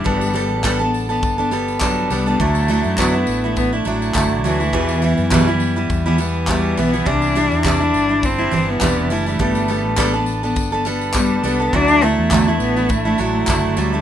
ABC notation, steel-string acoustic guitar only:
X:1
M:4/4
L:1/16
Q:"Swing 16ths" 1/4=103
K:G
V:1 name="Steel-string acoustic guitar"
[G,B,DA]2 [G,B,DA]2 [G,B,DA] [B,DA]2 [B,DA]2 [B,DA] [G,B,DA]2 [G,B,DA]2 [G,B,DA] [B,DA] | [D,F,A,DE]2 [F,A,DE]2 [D,F,A,DE] [A,DE]2 [A,DE]2 [A,DE] [F,A,DE]2 [D,F,A,DE]2 [F,A,DE] [A,DE] | [E,,B,,E,G,B,E]2 [E,G,B,E]2 [E,,B,,E,G,B,E] [E,G,B,E]2 [E,G,B,E]2 [E,G,B,E] [E,G,B,E]2 [E,,B,,E,G,B,E]2 [E,G,B,E] [E,G,B,E] | [C,E,G,DE]2 [E,G,DE]2 [C,E,G,DE] [G,DE]2 [G,DE]2 [G,DE] [E,G,DE]2 [C,E,G,DE]2 [E,G,DE] [G,DE] |
[G,B,DA]2 [G,B,DA]2 [G,B,DA] [B,DA]2 [B,DA]2 [B,DA] [G,B,DA]2 [G,B,DA]2 [G,B,DA] [B,DA] | [D,F,A,DE]2 [F,A,DE]2 [D,F,A,DE] [A,DE]2 [A,DE]2 [A,DE] [F,A,DE]2 [D,F,A,DE]2 [F,A,DE] [A,DE] |]